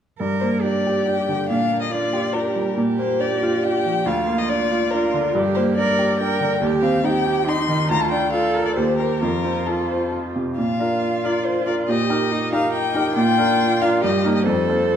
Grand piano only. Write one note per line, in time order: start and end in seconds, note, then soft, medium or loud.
0.20 1.46 G2 soft
0.42 0.77 A#3 soft
0.64 0.98 D4 soft
0.87 1.20 G4 soft
1.07 1.41 D4 soft
1.29 1.50 D3 soft
1.50 2.75 A#2 soft
1.72 2.06 A#3 soft
1.94 2.28 D4 soft
2.13 2.48 G4 soft
2.35 2.69 D4 soft
2.56 2.78 G3 soft
2.77 4.03 A#2 soft
2.99 3.34 A#3 soft
3.20 3.55 D4 soft
3.43 3.77 F4 soft
3.64 3.98 D4 soft
3.86 4.07 F3 soft
4.06 5.30 D2 soft
4.27 4.62 A#3 soft
4.49 4.83 D4 soft
4.72 5.05 F4 soft
4.93 5.27 D4 soft
5.14 5.35 D3 soft
5.35 6.58 G2 medium
5.57 5.90 A#3 soft
5.77 6.11 D4 soft
5.99 6.32 G4 soft
6.20 6.53 D4 soft
6.40 6.62 D3 soft
6.61 7.86 D#2 soft
6.82 7.17 C4 soft
7.04 7.39 D#4 soft
7.27 7.60 G4 soft
7.48 7.82 D#4 soft
7.69 7.90 D#3 soft
7.90 8.73 D2 soft
8.11 8.45 D4 soft
8.33 8.68 F4 soft
8.54 8.76 A#4 soft
8.77 9.20 D#2 soft
8.99 9.20 G4 soft
8.99 9.20 C5 soft
9.22 10.54 F2 soft
9.45 9.81 C4 soft
9.67 10.03 F4 soft
9.90 10.26 C5 soft
10.12 10.48 F4 soft
10.36 10.58 C3 soft
10.58 10.79 A#2 soft
10.79 11.19 D4 soft
10.79 11.20 F4 soft
10.79 11.20 A#4 soft
11.24 11.63 D4 soft
11.24 11.63 F4 soft
11.24 11.63 A#4 soft
11.67 11.86 D4 soft
11.67 11.86 F4 soft
11.67 11.87 A#4 soft
11.88 12.09 A#2 soft
12.10 12.48 D#4 soft
12.10 12.48 G4 soft
12.10 12.48 A#4 soft
12.52 12.91 D#4 soft
12.52 12.91 G4 soft
12.52 12.91 A#4 soft
12.95 13.14 D#4 soft
12.95 13.15 G4 soft
12.95 13.15 A#4 soft
13.16 13.37 A#2 medium
13.38 13.77 D4 soft
13.38 13.77 F4 soft
13.38 13.77 A#4 soft
13.81 14.01 D4 soft
13.81 14.01 F4 soft
13.81 14.01 A#4 soft
14.04 14.25 G2 soft
14.25 14.44 A#3 soft
14.25 14.45 D#4 soft
14.25 14.45 A#4 soft
14.46 14.68 F2 soft
14.69 14.96 C4 soft
14.69 14.96 F4 soft
14.69 14.96 A4 soft